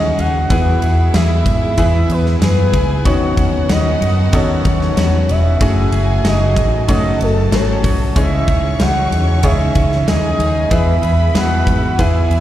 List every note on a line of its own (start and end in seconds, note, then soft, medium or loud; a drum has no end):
0.00 0.12 D#2 medium
0.00 0.48 C#3 medium
0.00 0.18 E3 medium
0.00 0.29 G#3 medium
0.00 0.48 G#3 medium
0.00 0.18 C#4 medium
0.00 0.29 C#4 medium
0.00 0.47 C#4 medium
0.00 0.18 D#4 medium
0.00 0.29 D#4 medium
0.00 0.48 F#4 medium
0.00 0.17 G#4 medium
0.00 0.29 G#4 medium
0.00 0.29 C#5 medium
0.00 0.21 D#5 loud
0.00 0.48 F#5 medium
0.18 0.44 D#2 loud
0.18 0.50 C#4 soft
0.18 0.51 D#4 medium
0.18 0.50 G#4 medium
0.18 1.16 F#5 loud
0.18 ride medium
0.50 0.76 E2 loud
0.50 3.03 B2 medium
0.50 0.82 E3 medium
0.50 1.42 E3 medium
0.50 3.03 G#3 medium
0.50 0.82 B3 medium
0.50 2.38 E4 medium
0.50 3.03 E4 medium
0.50 1.57 E4 medium
0.50 0.82 E4 loud
0.50 1.57 G#4 medium
0.50 0.81 G#4 loud
0.50 1.57 B4 medium
0.50 2.38 E5 medium
0.50 kick loud
0.50 ride medium
0.82 1.08 E2 medium
0.82 1.14 B3 soft
0.82 1.14 E4 medium
0.82 1.14 G#4 medium
0.82 ride medium
1.14 1.40 E2 loud
1.14 1.76 E3 medium
1.14 1.78 B3 medium
1.14 1.77 E4 medium
1.14 1.78 G#4 medium
1.14 1.78 E5 loud
1.14 snare loud
1.14 ride medium
1.46 1.72 G#2 medium
1.46 kick medium
1.46 ride medium
1.77 2.04 E2 loud
1.77 2.40 E3 medium
1.77 2.42 B3 medium
1.77 2.84 E4 medium
1.77 2.42 E4 loud
1.77 2.84 G#4 medium
1.77 2.42 G#4 medium
1.77 2.84 B4 medium
1.77 2.08 E5 loud
1.77 kick medium
1.77 ride medium
2.10 2.36 E2 loud
2.10 2.25 B4 medium
2.10 ride medium
2.26 snare soft
2.41 2.68 F#2 medium
2.41 2.73 E3 medium
2.41 2.74 B3 medium
2.41 2.73 E4 medium
2.41 3.04 G#4 medium
2.41 2.72 G#4 medium
2.41 3.08 B4 loud
2.41 3.04 G#5 loud
2.41 snare loud
2.41 ride medium
2.73 3.05 C#2 loud
2.73 3.05 B3 medium
2.73 3.06 E4 medium
2.73 3.05 G#4 medium
2.73 kick medium
2.73 ride medium
3.05 3.32 D#2 loud
3.05 8.12 C#3 medium
3.05 3.69 D#3 medium
3.05 3.97 D#3 medium
3.05 5.59 D#3 medium
3.05 3.68 F#3 medium
3.05 5.59 F#3 medium
3.05 4.12 B3 medium
3.05 3.68 B3 medium
3.05 5.59 B3 medium
3.05 4.12 C#4 medium
3.05 3.69 C#4 loud
3.05 4.12 D#4 medium
3.05 5.57 F#4 medium
3.05 4.12 F#4 medium
3.05 3.70 F#4 loud
3.05 4.12 C#5 medium
3.05 3.70 C#5 loud
3.05 5.57 F#5 loud
3.05 kick loud
3.05 ride medium
3.37 3.64 D#2 loud
3.37 kick medium
3.37 ride medium
3.68 3.95 D#2 loud
3.68 4.32 F#3 medium
3.68 4.32 B3 medium
3.68 4.33 C#4 medium
3.68 4.33 F#4 medium
3.68 4.37 D#5 loud
3.68 snare loud
3.68 ride medium
4.01 4.27 F#2 medium
4.01 ride medium
4.32 4.59 D#2 loud
4.32 4.97 D#3 medium
4.32 4.96 F#3 medium
4.32 5.40 B3 medium
4.32 4.96 B3 loud
4.32 5.40 C#4 medium
4.32 4.97 C#4 loud
4.32 5.40 D#4 medium
4.32 5.40 F#4 medium
4.32 4.98 F#4 loud
4.32 5.40 A4 medium
4.32 5.32 C#5 loud
4.32 kick medium
4.32 ride medium
4.65 4.91 D#2 loud
4.65 kick loud
4.65 ride medium
4.81 snare soft
4.96 5.23 E2 medium
4.96 5.29 F#3 medium
4.96 5.29 B3 medium
4.96 5.29 C#4 medium
4.96 5.28 F#4 medium
4.96 snare loud
4.96 ride medium
5.29 5.55 E1 medium
5.29 5.62 B3 medium
5.29 5.62 C#4 soft
5.29 5.61 F#4 medium
5.29 6.26 E5 loud
5.29 ride medium
5.60 5.87 F#1 loud
5.60 5.93 F#2 medium
5.60 5.93 C#3 medium
5.60 8.13 F#3 medium
5.60 5.93 F#3 loud
5.60 8.13 A3 medium
5.60 6.67 A3 medium
5.60 5.93 A3 medium
5.60 6.67 C#4 medium
5.60 8.14 F#4 medium
5.60 6.67 F#4 medium
5.60 5.92 F#4 loud
5.60 6.86 G#4 medium
5.60 6.67 G#4 medium
5.60 5.91 G#4 loud
5.60 6.67 C#5 medium
5.60 6.86 G#5 loud
5.60 kick loud
5.60 ride medium
5.92 6.19 F#1 medium
5.92 6.23 F#3 soft
5.92 6.24 A3 soft
5.92 6.25 F#4 soft
5.92 6.25 G#4 medium
5.92 ride medium
6.24 6.56 F#1 loud
6.24 6.88 F#3 medium
6.24 6.88 A3 medium
6.24 6.88 F#4 medium
6.24 6.89 G#4 medium
6.24 6.86 D#5 medium
6.24 snare loud
6.24 ride medium
6.56 6.89 A1 medium
6.56 kick medium
6.56 ride medium
6.88 7.15 F#1 loud
6.88 7.52 F#2 medium
6.88 7.52 C#3 medium
6.88 7.50 F#3 medium
6.88 7.95 A3 medium
6.88 8.14 A3 medium
6.88 7.51 A3 loud
6.88 7.95 C#4 medium
6.88 7.95 F#4 medium
6.88 7.52 F#4 medium
6.88 7.54 G#4 medium
6.88 7.95 C#5 medium
6.88 7.19 D#5 loud
6.88 8.14 A5 medium
6.88 kick medium
6.88 ride medium
7.20 7.46 F#1 loud
7.20 7.56 A4 medium
7.20 ride medium
7.52 7.84 G#1 medium
7.52 7.84 F#3 medium
7.52 7.84 A3 medium
7.52 7.83 F#4 medium
7.52 7.82 G#4 medium
7.52 8.17 C#5 loud
7.52 snare loud
7.52 ride medium
7.83 8.10 B1 medium
7.83 8.15 F#3 soft
7.83 8.16 A3 soft
7.83 8.16 F#4 medium
7.83 8.16 G#4 medium
7.83 kick medium
7.83 open hi-hat medium
7.83 ride medium
8.16 8.42 C#2 loud
8.16 8.48 C#3 medium
8.16 10.69 C#3 medium
8.16 9.08 C#3 medium
8.16 8.48 E3 loud
8.16 9.23 E3 medium
8.16 12.40 G#3 medium
8.16 9.22 G#3 medium
8.16 10.69 C#4 medium
8.16 9.22 C#4 medium
8.16 8.48 C#4 medium
8.16 8.47 D#4 loud
8.16 8.46 G#4 loud
8.16 10.04 C#5 medium
8.16 9.23 C#5 medium
8.16 8.83 E5 loud
8.16 10.04 C#6 medium
8.16 kick loud
8.16 hi-hat pedal medium
8.16 ride medium
8.47 8.74 C#2 medium
8.47 8.79 C#4 soft
8.47 8.79 D#4 medium
8.47 8.79 G#4 medium
8.47 kick medium
8.47 ride medium
8.79 9.06 C#2 loud
8.79 9.43 E3 medium
8.79 9.43 C#4 medium
8.79 9.43 D#4 medium
8.79 9.44 G#4 medium
8.79 9.45 F#5 loud
8.79 snare loud
8.79 ride medium
9.11 9.38 E2 medium
9.11 ride medium
9.43 9.70 C#2 loud
9.43 10.07 C#3 medium
9.43 10.06 E3 loud
9.43 10.50 G#3 medium
9.43 10.50 C#4 medium
9.43 10.06 C#4 medium
9.43 10.07 D#4 medium
9.43 10.50 G#4 medium
9.43 10.08 G#4 loud
9.43 10.50 C#5 medium
9.43 10.10 E5 loud
9.43 kick medium
9.43 ride loud
9.75 10.02 C#2 loud
9.75 kick medium
9.75 ride medium
9.92 snare soft
10.07 10.34 D#2 medium
10.07 10.39 E3 medium
10.07 10.39 C#4 medium
10.07 10.38 D#4 medium
10.07 10.70 G#4 medium
10.07 10.37 G#4 medium
10.07 10.74 D#5 loud
10.07 10.70 G#5 loud
10.07 snare loud
10.07 ride medium
10.38 10.65 D#2 loud
10.38 10.71 C#4 medium
10.38 10.71 D#4 medium
10.38 10.71 G#4 medium
10.38 ride medium
10.71 10.97 E2 loud
10.71 12.40 B2 medium
10.71 11.03 E3 loud
10.71 11.63 E3 medium
10.71 11.03 B3 loud
10.71 12.40 E4 medium
10.71 11.77 E4 medium
10.71 11.02 E4 medium
10.71 11.78 G#4 medium
10.71 11.01 G#4 loud
10.71 11.96 B4 medium
10.71 11.78 B4 medium
10.71 11.36 E5 loud
10.71 11.96 B5 loud
10.71 kick loud
10.71 ride medium
11.02 11.29 E2 medium
11.02 11.34 B3 soft
11.02 11.34 E4 medium
11.02 11.35 G#4 medium
11.02 ride medium
11.34 11.61 E2 loud
11.34 11.97 E3 medium
11.34 11.99 B3 medium
11.34 11.98 E4 medium
11.34 11.98 G#4 medium
11.34 12.02 F#5 loud
11.34 snare loud
11.34 ride medium
11.67 11.93 G#2 medium
11.67 kick loud
11.67 ride medium
11.98 12.25 E2 loud
11.98 12.40 E3 medium
11.98 12.40 B3 medium
11.98 12.40 E4 medium
11.98 12.40 E4 loud
11.98 12.40 G#4 medium
11.98 12.40 G#4 loud
11.98 12.40 B4 medium
11.98 12.40 E5 loud
11.98 12.40 G#5 medium
11.98 kick medium
11.98 ride medium
12.30 12.40 E2 loud
12.30 ride medium